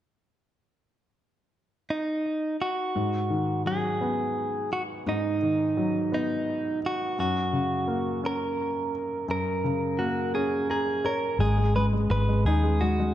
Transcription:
1.90 2.56 D#4 soft
2.62 3.62 F#4 medium
2.95 5.02 G#2 soft
3.30 4.67 D#3 soft
3.66 5.02 F#3 soft
3.66 4.72 G#4 medium
4.01 5.37 B3 soft
4.73 4.82 F#4 medium
5.07 7.14 G#2 soft
5.07 6.13 D#4 medium
5.43 6.79 D#3 soft
5.77 7.14 F#3 soft
6.12 7.14 B3 soft
6.12 6.79 D#4 medium
6.86 7.19 F#4 medium
7.19 9.25 F#2 soft
7.19 8.20 F#4 medium
7.53 8.90 C#3 soft
7.88 9.25 A#3 soft
8.24 9.60 C#4 soft
8.24 9.26 A#4 medium
9.28 11.36 F#2 soft
9.28 11.02 A#4 medium
9.64 11.01 C#3 soft
9.99 11.36 A#3 soft
9.99 10.34 F#4 medium
10.34 11.37 C#4 soft
10.34 10.67 G#4 medium
10.70 11.07 G#4 medium
10.70 11.02 A#5 soft
11.05 11.40 A#4 medium
11.05 11.38 C#5 medium
11.39 12.06 G#1 medium
11.39 11.56 G#3 soft
11.39 11.75 G#4 medium
11.58 11.74 G#3 soft
11.76 11.92 G#3 soft
11.76 11.85 B4 medium
11.93 12.10 G#3 soft
12.10 12.44 G#1 medium
12.10 12.27 G#3 soft
12.10 12.46 B4 medium
12.29 12.62 G#3 soft
12.45 13.12 D#2 medium
12.45 13.14 D#4 medium
12.45 12.82 G#4 medium
12.63 12.80 G#3 soft
12.81 12.98 G#3 soft
12.81 13.14 F#4 medium
13.00 13.14 G#3 soft

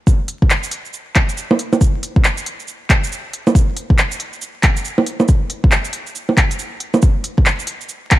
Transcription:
0.07 kick loud
0.07 shaker medium
0.28 open hi-hat medium
0.42 kick loud
0.50 clap loud
0.50 shaker medium
0.63 shaker medium
0.71 open hi-hat medium
0.85 shaker soft
0.93 shaker medium
1.15 kick loud
1.15 clap loud
1.15 open hi-hat medium
1.29 shaker medium
1.37 shaker medium
1.51 low bongo medium
1.59 open hi-hat medium
1.73 low bongo soft
1.73 shaker soft
1.81 kick loud
1.81 shaker medium
2.03 open hi-hat medium
2.16 kick loud
2.24 clap loud
2.24 shaker medium
2.38 shaker medium
2.46 open hi-hat medium
2.60 shaker soft
2.68 shaker medium
2.90 kick loud
2.90 clap loud
2.90 open hi-hat medium
3.04 shaker medium
3.12 shaker medium
3.33 open hi-hat medium
3.47 low bongo medium
3.47 shaker soft
3.55 kick loud
3.55 shaker medium
3.77 open hi-hat medium
3.90 kick loud
3.98 clap loud
3.98 shaker medium
4.12 shaker medium
4.20 open hi-hat medium
4.33 shaker soft
4.42 shaker medium
4.63 kick loud
4.63 clap loud
4.63 open hi-hat medium
4.77 shaker medium
4.85 shaker medium
4.98 low bongo soft
5.06 open hi-hat medium
5.20 low bongo soft
5.20 shaker soft
5.28 kick loud
5.28 shaker medium
5.50 open hi-hat medium
5.64 kick loud
5.71 clap loud
5.71 shaker medium
5.85 shaker medium
5.93 open hi-hat medium
6.07 shaker soft
6.15 shaker medium
6.29 low bongo soft
6.37 kick loud
6.37 clap loud
6.37 open hi-hat medium
6.51 open hi-hat soft
6.51 shaker medium
6.59 shaker medium
6.80 open hi-hat medium
6.94 low bongo soft
6.94 shaker soft
7.02 kick loud
7.02 shaker medium
7.24 open hi-hat medium
7.38 kick loud
7.46 clap loud
7.46 shaker soft
7.59 shaker medium
7.67 open hi-hat medium
7.81 shaker soft
7.89 shaker medium
8.11 kick loud
8.11 clap loud
8.11 open hi-hat medium

